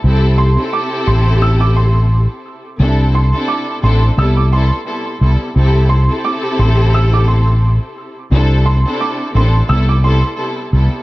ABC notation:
X:1
M:4/4
L:1/16
Q:"Swing 16ths" 1/4=87
K:Am
V:1 name="Upright piano"
z2 c'2 d'2 c'2 e' d' c'3 z3 | z2 c'2 d'2 c'2 e' d' c'3 z3 | z2 c'2 d'2 c'2 e' d' c'3 z3 | z2 c'2 d'2 c'2 e' d' c'3 z3 |]
V:2 name="String section"
[C,CEGA]3 [C,CEGA]12 z | [C,CDEA]3 [C,CDEA]3 [C,CDEA]2 [C,G,B,EA]2 [C,G,B,EA]2 [C,G,B,EA]2 [C,G,B,EA]2 | [C,CEGA]3 [C,CEGA]12 z | [C,CDEA]3 [C,CDEA]3 [C,CDEA]2 [C,G,B,EA]2 [C,G,B,EA]2 [C,G,B,EA]2 [C,G,B,EA]2 |]
V:3 name="Fretless electric bass" clef=bass
C,,4 z2 A,,,6- A,,, z3 | C,,4 z2 A,,,2 C,,4 z2 C,, z | C,,4 z2 A,,,6- A,,, z3 | C,,4 z2 A,,,2 C,,4 z2 C,, z |]